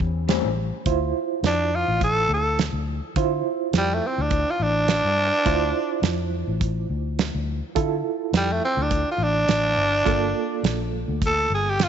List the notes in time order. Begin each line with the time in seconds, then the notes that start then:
Already playing: C#4 G4 C5
0.00 E2, kick
0.28 A2 G3 C4 C#4, snare, closed hi-hat
0.45 A1
0.86 D2 E4 F4 C5, kick, closed hi-hat
1.43 F2 D4, snare, closed hi-hat
1.76 F4
1.88 A1
2.01 A4, kick, closed hi-hat
2.29 D2
2.33 A4
2.59 snare, closed hi-hat
2.73 D2
3.16 D3 E4 F4 C5, kick, closed hi-hat
3.73 F2, snare, closed hi-hat
3.78 G3
3.94 A3
4.07 C4
4.18 D2 D4
4.31 kick, closed hi-hat
4.51 F4
4.60 A1 D4
4.88 snare, closed hi-hat
5.04 G2
5.45 D2 E4 F4 C5, kick, closed hi-hat
6.02 F2, snare, closed hi-hat
6.48 A1
6.61 kick, closed hi-hat
6.90 D2
7.19 snare, closed hi-hat
7.35 D2
7.75 D3 E4 F4 A4, kick, closed hi-hat
8.33 F2, snare, closed hi-hat
8.37 G3
8.53 A3
8.65 C4
8.77 D2
8.82 D4
8.91 kick, closed hi-hat
9.12 F4
9.18 A1
9.23 D4
9.48 A1, snare, closed hi-hat
9.76 G1
10.05 G1 A#3 F4 A4, kick, closed hi-hat
10.63 A#1, snare, closed hi-hat
11.08 D2
11.22 kick, closed hi-hat
11.26 A4
11.50 G1
11.55 G#4
11.70 G4
11.79 F4, snare, closed hi-hat